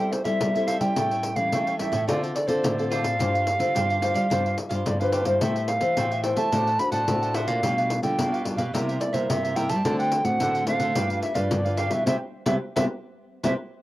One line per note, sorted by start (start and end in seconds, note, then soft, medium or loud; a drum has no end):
0.00 0.38 G3 medium
0.00 0.22 C4 soft
0.00 0.23 E4 medium
0.00 0.23 A4 medium
0.00 0.11 C5 soft
0.00 0.11 E5 soft
0.00 0.13 G5 medium
0.00 pandeiro soft
0.12 0.24 C5 medium
0.12 muted cavaquinho stroke soft
0.12 pandeiro medium
0.24 0.38 G3 medium
0.24 0.50 C4 soft
0.24 0.50 E4 medium
0.24 0.50 A4 medium
0.24 0.54 C5 soft
0.24 0.52 E5 medium
0.24 0.68 E5 medium
0.24 pandeiro soft
0.41 0.76 G3 medium
0.41 0.80 G3 soft
0.41 pandeiro medium
0.55 0.79 C4 medium
0.55 0.79 E4 medium
0.55 0.79 A4 medium
0.55 0.67 C5 soft
0.55 0.68 E5 soft
0.55 pandeiro soft
0.67 0.81 A4 medium
0.67 0.81 C5 medium
0.67 0.79 E5 medium
0.67 0.79 F5 medium
0.67 pandeiro medium
0.80 0.93 G3 medium
0.80 1.33 G3 medium
0.80 1.33 C#4 soft
0.80 1.33 E4 medium
0.80 0.95 C5 soft
0.80 0.94 E5 soft
0.80 1.37 G5 medium
0.80 pandeiro medium
0.96 1.49 A2 soft
0.96 1.32 A3 medium
0.96 1.09 E4 medium
0.96 1.10 A4 medium
0.96 1.10 C#5 medium
0.96 1.10 G5 medium
0.96 pandeiro medium
1.11 1.23 A4 soft
1.11 1.23 C#5 soft
1.11 1.24 G5 soft
1.11 pandeiro soft
1.23 muted cavaquinho stroke soft
1.23 pandeiro medium
1.36 1.49 E3 medium
1.36 1.75 G3 medium
1.36 1.75 C#4 medium
1.36 1.78 F5 medium
1.36 pandeiro soft
1.52 2.05 E3 medium
1.52 1.88 A3 medium
1.52 1.65 E4 medium
1.52 1.66 A4 medium
1.52 1.66 C#5 medium
1.52 1.65 G5 medium
1.52 pandeiro medium
1.67 1.79 A4 soft
1.67 1.79 C#5 soft
1.67 1.79 G5 soft
1.67 pandeiro soft
1.79 1.96 G3 soft
1.79 1.96 C#4 soft
1.79 1.92 E4 soft
1.79 1.96 E4 medium
1.79 1.93 A4 soft
1.79 1.92 C#5 soft
1.79 2.05 E5 medium
1.79 1.91 G5 soft
1.79 pandeiro medium
1.92 2.05 A2 medium
1.92 2.07 A4 soft
1.92 2.06 C#5 medium
1.92 2.06 G5 medium
1.92 pandeiro medium
2.08 2.31 D3 medium
2.08 2.61 D3 medium
2.08 2.34 C4 medium
2.08 2.21 F4 medium
2.08 2.34 F4 medium
2.08 2.34 A4 medium
2.08 2.21 A4 medium
2.08 2.22 C5 medium
2.08 2.21 D5 medium
2.08 pandeiro medium
2.22 2.34 A4 soft
2.22 2.35 C5 soft
2.22 2.35 D5 soft
2.22 pandeiro soft
2.35 2.49 D5 medium
2.35 muted cavaquinho stroke soft
2.35 pandeiro medium
2.47 2.60 D3 medium
2.47 2.72 C4 soft
2.47 2.73 F4 medium
2.47 2.73 A4 medium
2.47 2.76 A4 medium
2.47 2.89 C5 medium
2.47 2.76 C5 medium
2.47 2.75 D5 medium
2.47 pandeiro soft
2.64 3.17 A2 medium
2.64 3.03 D3 medium
2.64 pandeiro medium
2.78 3.15 C4 medium
2.78 3.15 F4 medium
2.78 3.16 A4 medium
2.78 2.90 A4 soft
2.78 2.91 C5 soft
2.78 2.91 D5 soft
2.78 pandeiro soft
2.90 3.04 F4 medium
2.90 3.04 A4 medium
2.90 3.03 C5 medium
2.90 3.02 D5 medium
2.90 4.56 F5 medium
2.90 pandeiro medium
3.03 3.16 A2 medium
3.03 3.18 A4 soft
3.03 3.18 C5 soft
3.03 3.17 D5 soft
3.03 pandeiro medium
3.19 3.55 G2 medium
3.19 3.72 G3 soft
3.19 3.32 D4 medium
3.19 3.45 D4 soft
3.19 3.46 F4 medium
3.19 3.32 G4 medium
3.19 3.46 C5 soft
3.19 3.33 C5 medium
3.19 3.32 F5 medium
3.19 pandeiro medium
3.33 3.45 G4 soft
3.33 3.46 C5 soft
3.33 3.46 F5 soft
3.33 pandeiro soft
3.46 muted cavaquinho stroke soft
3.46 pandeiro medium
3.59 3.72 D3 medium
3.59 3.97 D4 medium
3.59 3.98 F4 medium
3.59 3.98 C5 medium
3.59 pandeiro soft
3.75 4.10 G2 medium
3.75 4.28 D3 soft
3.75 3.87 D4 medium
3.75 3.88 G4 medium
3.75 3.88 C5 medium
3.75 3.88 F5 medium
3.75 pandeiro medium
3.89 4.01 G4 soft
3.89 4.01 C5 soft
3.89 4.02 F5 soft
3.89 pandeiro soft
4.01 4.15 D4 soft
4.01 4.25 D4 soft
4.01 4.26 F4 soft
4.01 4.15 G4 soft
4.01 4.14 C5 soft
4.01 4.26 C5 medium
4.01 4.13 F5 soft
4.01 pandeiro medium
4.14 4.27 G3 medium
4.14 4.29 G4 soft
4.14 4.29 C5 medium
4.14 4.28 F5 medium
4.14 pandeiro soft
4.30 4.54 G2 medium
4.30 4.83 G3 soft
4.30 4.43 D4 medium
4.30 4.57 D4 soft
4.30 4.57 F4 medium
4.30 4.43 G4 medium
4.30 4.57 C5 medium
4.30 4.44 C5 medium
4.30 4.43 F5 medium
4.30 pandeiro medium
4.44 4.56 G4 soft
4.44 4.56 C5 soft
4.44 4.57 F5 soft
4.44 pandeiro soft
4.57 muted cavaquinho stroke soft
4.57 pandeiro medium
4.69 4.82 G2 medium
4.69 4.95 D4 medium
4.69 4.95 F4 soft
4.69 4.98 G4 soft
4.69 4.98 C5 medium
4.69 4.95 C5 soft
4.69 4.97 F5 medium
4.69 pandeiro soft
4.86 5.21 G2 medium
4.86 5.39 D3 soft
4.86 4.99 D5 medium
4.86 pandeiro medium
5.00 5.24 D4 medium
5.00 5.24 F4 medium
5.00 5.11 G4 soft
5.00 5.27 B4 medium
5.00 5.12 C5 soft
5.00 5.24 C5 medium
5.00 5.12 F5 soft
5.00 pandeiro soft
5.12 5.25 D4 medium
5.12 5.26 G4 medium
5.12 5.25 C5 medium
5.12 5.24 F5 medium
5.12 pandeiro medium
5.25 5.38 G2 medium
5.25 5.78 E4 medium
5.25 5.78 G4 medium
5.25 5.40 G4 soft
5.25 5.43 C5 medium
5.25 5.78 C5 medium
5.25 5.40 C5 soft
5.25 5.39 F5 soft
5.25 pandeiro medium
5.41 5.77 A2 medium
5.41 5.94 A3 soft
5.41 5.54 A4 medium
5.41 5.54 C5 medium
5.41 5.70 E5 medium
5.41 5.55 E5 medium
5.41 5.54 G5 medium
5.41 pandeiro medium
5.55 5.67 C5 soft
5.55 5.68 E5 soft
5.55 5.68 G5 soft
5.55 pandeiro soft
5.68 6.23 F5 medium
5.68 muted cavaquinho stroke soft
5.68 pandeiro medium
5.81 5.94 E3 medium
5.81 6.19 G4 medium
5.81 6.19 C5 medium
5.81 pandeiro soft
5.97 6.32 A2 medium
5.97 6.49 E3 medium
5.97 6.10 A4 medium
5.97 6.10 C5 medium
5.97 6.10 E5 medium
5.97 6.10 G5 medium
5.97 pandeiro medium
6.11 6.23 C5 soft
6.11 6.23 E5 soft
6.11 6.24 G5 soft
6.11 pandeiro soft
6.23 6.49 E4 soft
6.23 6.50 G4 medium
6.23 6.36 A4 soft
6.23 6.37 C5 soft
6.23 6.50 C5 soft
6.23 6.36 E5 soft
6.23 6.36 G5 medium
6.23 6.35 G5 soft
6.23 pandeiro medium
6.36 6.49 A3 medium
6.36 6.51 C5 soft
6.36 6.51 E5 medium
6.36 6.50 G5 medium
6.36 6.81 A5 medium
6.36 pandeiro medium
6.52 6.76 A2 medium
6.52 7.05 A3 medium
6.52 6.65 D4 medium
6.52 6.69 D4 soft
6.52 6.69 F#4 medium
6.52 6.65 C5 medium
6.52 6.69 C5 medium
6.52 6.66 D5 medium
6.52 6.66 F#5 medium
6.52 pandeiro medium
6.67 6.79 C5 soft
6.67 6.79 D5 soft
6.67 6.79 F#5 soft
6.67 pandeiro soft
6.79 7.03 D4 soft
6.79 7.03 F#4 soft
6.79 7.04 C5 medium
6.79 6.92 B5 medium
6.79 muted cavaquinho stroke soft
6.79 pandeiro medium
6.92 7.04 A2 medium
6.92 7.21 C5 medium
6.92 7.20 D5 medium
6.92 7.19 F#5 medium
6.92 7.36 A5 medium
6.92 pandeiro soft
7.08 7.47 A2 medium
7.08 7.61 A3 medium
7.08 7.59 D4 medium
7.08 7.60 F#4 soft
7.08 7.60 C5 medium
7.08 pandeiro medium
7.22 7.34 C5 soft
7.22 7.35 D5 soft
7.22 7.35 F#5 soft
7.22 pandeiro soft
7.34 7.48 D4 medium
7.34 7.48 C5 medium
7.34 7.47 D5 medium
7.34 7.49 E5 medium
7.34 7.46 F#5 medium
7.34 pandeiro medium
7.47 7.60 A#2 medium
7.47 7.62 C5 soft
7.47 7.62 D5 soft
7.47 8.02 F5 medium
7.47 7.61 F#5 soft
7.47 pandeiro medium
7.63 7.98 B2 medium
7.63 8.16 B2 soft
7.63 8.01 G3 medium
7.63 7.76 D4 medium
7.63 8.01 D4 soft
7.63 8.01 F4 medium
7.63 7.76 G4 medium
7.63 7.77 B4 medium
7.63 7.76 F5 medium
7.63 pandeiro medium
7.78 7.89 G4 soft
7.78 7.90 B4 soft
7.78 7.90 F5 soft
7.78 pandeiro soft
7.90 muted cavaquinho stroke soft
7.90 pandeiro medium
8.03 8.15 D3 medium
8.03 8.41 G3 medium
8.03 8.42 D4 medium
8.03 8.42 F4 medium
8.03 8.42 G5 medium
8.03 pandeiro soft
8.18 8.54 B2 medium
8.18 8.71 B2 medium
8.18 8.31 D4 medium
8.18 8.32 G4 medium
8.18 8.32 B4 medium
8.18 8.31 F5 medium
8.18 pandeiro medium
8.32 8.44 G4 soft
8.32 8.45 B4 soft
8.32 8.45 F5 soft
8.32 pandeiro soft
8.45 8.62 G3 soft
8.45 8.58 D4 soft
8.45 8.62 D4 soft
8.45 8.63 F4 medium
8.45 8.59 G4 soft
8.45 8.57 B4 soft
8.45 8.56 F5 soft
8.45 pandeiro medium
8.57 8.71 B2 medium
8.57 8.73 G4 soft
8.57 8.72 B4 medium
8.57 8.71 F5 medium
8.57 pandeiro medium
8.73 9.27 C3 medium
8.73 8.98 C3 medium
8.73 9.11 G3 soft
8.73 9.11 A#3 soft
8.73 8.86 E4 medium
8.73 9.12 E4 medium
8.73 8.87 A#4 medium
8.73 8.87 C5 medium
8.73 8.87 E5 medium
8.73 pandeiro medium
8.88 9.00 A#4 soft
8.88 9.00 C5 soft
8.88 9.00 E5 soft
8.88 pandeiro soft
9.00 9.15 D5 medium
9.00 muted cavaquinho stroke soft
9.00 pandeiro medium
9.13 9.26 C3 medium
9.13 9.52 G3 soft
9.13 9.52 A#3 medium
9.13 9.52 E4 medium
9.13 9.42 A#4 medium
9.13 9.31 C5 medium
9.13 9.42 C5 soft
9.13 9.41 E5 medium
9.13 pandeiro soft
9.30 9.82 G2 medium
9.30 9.71 C3 medium
9.30 9.58 E5 medium
9.30 pandeiro medium
9.43 9.55 A#4 soft
9.43 9.56 C5 soft
9.43 9.56 E5 soft
9.43 pandeiro soft
9.56 9.73 G3 soft
9.56 9.73 A#3 soft
9.56 9.69 E4 medium
9.56 9.73 E4 medium
9.56 9.70 A#4 medium
9.56 9.69 C5 medium
9.56 9.68 E5 medium
9.56 9.71 G5 medium
9.56 pandeiro medium
9.69 9.82 G3 medium
9.69 9.84 A#4 soft
9.69 9.83 C5 soft
9.69 9.83 E5 soft
9.69 9.98 A5 medium
9.69 pandeiro medium
9.85 10.37 D3 medium
9.85 10.20 D3 medium
9.85 10.22 A3 medium
9.85 10.22 C4 medium
9.85 9.98 D4 medium
9.85 10.22 F#4 medium
9.85 9.98 A4 medium
9.85 9.98 C5 medium
9.85 9.98 F#5 medium
9.85 pandeiro medium
9.99 10.11 A4 soft
9.99 10.11 C5 soft
9.99 10.11 F#5 soft
9.99 10.26 G5 medium
9.99 pandeiro soft
10.12 muted cavaquinho stroke soft
10.12 pandeiro medium
10.24 10.37 A2 medium
10.24 10.62 A3 medium
10.24 10.63 C4 medium
10.24 10.63 F#4 medium
10.24 10.67 F#5 medium
10.24 pandeiro medium
10.40 10.93 A2 medium
10.40 10.76 D3 medium
10.40 10.53 D4 medium
10.40 10.53 A4 medium
10.40 10.54 C5 medium
10.40 10.53 F#5 medium
10.40 pandeiro medium
10.55 10.66 A4 soft
10.55 10.67 C5 soft
10.55 10.67 F#5 soft
10.55 pandeiro soft
10.66 10.91 A3 soft
10.66 10.91 C4 soft
10.66 10.80 D4 soft
10.66 10.91 F#4 soft
10.66 10.80 A4 soft
10.66 10.79 C5 soft
10.66 11.19 F5 loud
10.66 10.78 F#5 medium
10.66 pandeiro medium
10.79 10.93 D3 medium
10.79 10.94 A4 medium
10.79 10.94 C5 medium
10.79 10.93 F#5 medium
10.79 pandeiro medium
10.95 11.19 G2 medium
10.95 11.49 G3 medium
10.95 11.08 D4 medium
10.95 11.33 D4 soft
10.95 11.33 F4 medium
10.95 11.09 G4 medium
10.95 11.09 B4 medium
10.95 11.33 B4 medium
10.95 11.08 F5 medium
10.95 pandeiro medium
11.09 11.21 G4 soft
11.09 11.21 B4 soft
11.09 11.22 F5 soft
11.09 pandeiro soft
11.22 11.37 E5 medium
11.22 muted cavaquinho stroke soft
11.22 pandeiro medium
11.34 11.48 G2 medium
11.34 11.60 D4 soft
11.34 11.60 F4 medium
11.34 11.64 G4 medium
11.34 11.63 B4 medium
11.34 11.60 B4 medium
11.34 11.80 D5 medium
11.34 11.62 F5 medium
11.34 pandeiro medium
11.51 11.91 G2 medium
11.51 12.04 D3 medium
11.51 pandeiro medium
11.65 11.88 D4 medium
11.65 11.88 F4 medium
11.65 11.77 G4 soft
11.65 11.77 B4 soft
11.65 11.89 B4 medium
11.65 11.78 F5 soft
11.65 pandeiro soft
11.77 11.91 D4 medium
11.77 11.91 G4 medium
11.77 11.90 B4 medium
11.77 11.93 F5 medium
11.77 11.89 F5 medium
11.77 pandeiro medium
11.90 12.03 B2 medium
11.90 12.05 G3 medium
11.90 12.05 B3 medium
11.90 12.06 E4 soft
11.90 12.05 G4 soft
11.90 12.05 B4 soft
11.90 12.06 E5 medium
11.90 12.04 F5 soft
11.90 pandeiro medium
12.06 12.17 C3 medium
12.06 12.15 G3 medium
12.06 12.15 B3 medium
12.06 12.15 C4 medium
12.06 12.15 G4 medium
12.06 12.15 B4 medium
12.06 12.15 C5 medium
12.06 12.16 E5 medium
12.06 pandeiro medium
12.46 12.57 C3 medium
12.46 12.56 G3 medium
12.46 12.56 B3 medium
12.46 12.56 C4 medium
12.46 12.56 G4 medium
12.46 12.56 B4 loud
12.46 12.56 C5 medium
12.46 12.56 E5 medium
12.46 pandeiro medium
12.76 12.86 C3 medium
12.76 12.85 G3 medium
12.76 12.85 B3 medium
12.76 12.85 C4 medium
12.76 12.85 G4 medium
12.76 12.85 B4 medium
12.76 12.85 C5 medium
12.76 12.85 E5 medium
12.76 pandeiro medium
13.43 13.54 C3 medium
13.43 13.53 G3 medium
13.43 13.53 B3 medium
13.43 13.53 C4 medium
13.43 13.53 G4 medium
13.43 13.53 B4 medium
13.43 13.53 C5 medium
13.43 13.53 E5 medium
13.43 pandeiro medium